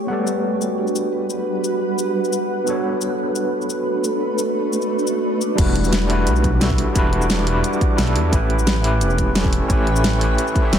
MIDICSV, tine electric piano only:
0, 0, Header, 1, 2, 480
1, 0, Start_track
1, 0, Tempo, 342857
1, 137, Time_signature, 4, 2, 24, 8
1, 15103, End_track
2, 0, Start_track
2, 0, Title_t, "Tine electric piano"
2, 0, Program_c, 0, 4
2, 0, Control_c, 0, 64, 127
2, 95, Note_on_c, 0, 59, 69
2, 116, Note_on_c, 0, 78, 67
2, 136, Note_on_c, 0, 55, 66
2, 156, Note_on_c, 0, 69, 65
2, 158, Control_c, 0, 64, 0
2, 177, Note_on_c, 0, 74, 77
2, 435, Control_c, 0, 64, 127
2, 3681, Note_off_c, 0, 59, 0
2, 3698, Note_on_c, 0, 59, 74
2, 3699, Note_off_c, 0, 78, 0
2, 3709, Note_off_c, 0, 55, 0
2, 3718, Note_on_c, 0, 62, 67
2, 3719, Note_off_c, 0, 69, 0
2, 3730, Note_off_c, 0, 74, 0
2, 3738, Note_on_c, 0, 66, 65
2, 3756, Control_c, 0, 64, 0
2, 3759, Note_on_c, 0, 69, 67
2, 3779, Note_on_c, 0, 73, 80
2, 3972, Control_c, 0, 64, 127
2, 7530, Note_off_c, 0, 59, 0
2, 7540, Note_off_c, 0, 62, 0
2, 7550, Note_off_c, 0, 66, 0
2, 7560, Note_off_c, 0, 69, 0
2, 7570, Note_off_c, 0, 73, 0
2, 7776, Note_on_c, 0, 55, 91
2, 7796, Note_on_c, 0, 62, 82
2, 7816, Note_on_c, 0, 64, 82
2, 7837, Control_c, 0, 64, 0
2, 7837, Note_on_c, 0, 66, 84
2, 7857, Note_on_c, 0, 71, 97
2, 8095, Control_c, 0, 64, 127
2, 8478, Note_off_c, 0, 55, 0
2, 8495, Note_on_c, 0, 55, 83
2, 8499, Note_off_c, 0, 62, 0
2, 8509, Note_off_c, 0, 64, 0
2, 8515, Note_on_c, 0, 62, 75
2, 8520, Note_off_c, 0, 66, 0
2, 8530, Note_off_c, 0, 71, 0
2, 8536, Note_on_c, 0, 64, 74
2, 8556, Note_on_c, 0, 66, 76
2, 8578, Note_on_c, 0, 71, 91
2, 9208, Note_off_c, 0, 55, 0
2, 9218, Note_off_c, 0, 62, 0
2, 9229, Note_off_c, 0, 64, 0
2, 9237, Note_on_c, 0, 55, 83
2, 9239, Note_off_c, 0, 66, 0
2, 9246, Note_on_c, 0, 62, 76
2, 9250, Note_off_c, 0, 71, 0
2, 9258, Note_on_c, 0, 64, 75
2, 9268, Note_on_c, 0, 66, 74
2, 9279, Note_on_c, 0, 69, 93
2, 9679, Note_off_c, 0, 55, 0
2, 9696, Note_on_c, 0, 55, 87
2, 9700, Note_off_c, 0, 62, 0
2, 9710, Note_off_c, 0, 64, 0
2, 9715, Note_off_c, 0, 66, 0
2, 9717, Note_on_c, 0, 62, 81
2, 9720, Note_off_c, 0, 69, 0
2, 9737, Note_on_c, 0, 64, 83
2, 9758, Note_on_c, 0, 66, 81
2, 9778, Note_on_c, 0, 71, 96
2, 10399, Note_off_c, 0, 55, 0
2, 10416, Note_on_c, 0, 55, 81
2, 10419, Note_off_c, 0, 62, 0
2, 10430, Note_off_c, 0, 64, 0
2, 10436, Note_on_c, 0, 62, 77
2, 10440, Note_off_c, 0, 66, 0
2, 10450, Note_off_c, 0, 71, 0
2, 10457, Note_on_c, 0, 64, 74
2, 10477, Note_on_c, 0, 66, 76
2, 10498, Note_on_c, 0, 71, 90
2, 11129, Note_off_c, 0, 55, 0
2, 11139, Note_off_c, 0, 62, 0
2, 11149, Note_off_c, 0, 64, 0
2, 11156, Note_on_c, 0, 55, 84
2, 11160, Note_off_c, 0, 66, 0
2, 11167, Note_on_c, 0, 62, 77
2, 11170, Note_off_c, 0, 71, 0
2, 11177, Note_on_c, 0, 64, 76
2, 11187, Note_on_c, 0, 66, 76
2, 11198, Note_on_c, 0, 69, 92
2, 11615, Note_on_c, 0, 57, 92
2, 11619, Note_off_c, 0, 55, 0
2, 11624, Note_off_c, 0, 62, 0
2, 11630, Note_off_c, 0, 64, 0
2, 11634, Note_off_c, 0, 66, 0
2, 11636, Note_on_c, 0, 61, 82
2, 11640, Note_off_c, 0, 69, 0
2, 11657, Note_on_c, 0, 64, 81
2, 11676, Control_c, 0, 64, 0
2, 11677, Note_on_c, 0, 67, 83
2, 11698, Note_on_c, 0, 71, 100
2, 11885, Control_c, 0, 64, 127
2, 12320, Note_off_c, 0, 57, 0
2, 12337, Note_on_c, 0, 57, 84
2, 12339, Note_off_c, 0, 61, 0
2, 12349, Note_off_c, 0, 64, 0
2, 12357, Note_on_c, 0, 61, 73
2, 12359, Note_off_c, 0, 67, 0
2, 12370, Note_off_c, 0, 71, 0
2, 12378, Note_on_c, 0, 64, 75
2, 12399, Note_on_c, 0, 67, 77
2, 12419, Note_on_c, 0, 71, 90
2, 13050, Note_off_c, 0, 57, 0
2, 13060, Note_off_c, 0, 61, 0
2, 13070, Note_off_c, 0, 64, 0
2, 13078, Note_on_c, 0, 57, 84
2, 13080, Note_off_c, 0, 67, 0
2, 13088, Note_on_c, 0, 61, 76
2, 13090, Note_off_c, 0, 71, 0
2, 13099, Note_on_c, 0, 64, 77
2, 13109, Note_on_c, 0, 67, 76
2, 13119, Note_on_c, 0, 69, 91
2, 13518, Note_off_c, 0, 57, 0
2, 13535, Note_on_c, 0, 57, 88
2, 13539, Note_off_c, 0, 61, 0
2, 13551, Note_off_c, 0, 64, 0
2, 13555, Note_off_c, 0, 67, 0
2, 13556, Note_on_c, 0, 61, 82
2, 13561, Note_off_c, 0, 69, 0
2, 13576, Note_on_c, 0, 64, 81
2, 13597, Note_on_c, 0, 67, 82
2, 13617, Note_on_c, 0, 71, 100
2, 14241, Note_off_c, 0, 57, 0
2, 14257, Note_on_c, 0, 57, 82
2, 14259, Note_off_c, 0, 61, 0
2, 14269, Note_off_c, 0, 64, 0
2, 14278, Note_on_c, 0, 61, 76
2, 14279, Note_off_c, 0, 67, 0
2, 14289, Note_off_c, 0, 71, 0
2, 14298, Note_on_c, 0, 64, 75
2, 14319, Note_on_c, 0, 67, 76
2, 14339, Note_on_c, 0, 71, 90
2, 14846, Note_off_c, 0, 57, 0
2, 14863, Note_on_c, 0, 57, 93
2, 14868, Note_off_c, 0, 61, 0
2, 14878, Note_off_c, 0, 64, 0
2, 14883, Note_on_c, 0, 61, 85
2, 14888, Note_off_c, 0, 67, 0
2, 14898, Note_off_c, 0, 71, 0
2, 14904, Note_on_c, 0, 64, 87
2, 14924, Note_on_c, 0, 67, 84
2, 14945, Note_on_c, 0, 76, 99
2, 15103, Note_off_c, 0, 57, 0
2, 15103, Note_off_c, 0, 61, 0
2, 15103, Note_off_c, 0, 64, 0
2, 15103, Note_off_c, 0, 67, 0
2, 15103, Note_off_c, 0, 76, 0
2, 15103, End_track
0, 0, End_of_file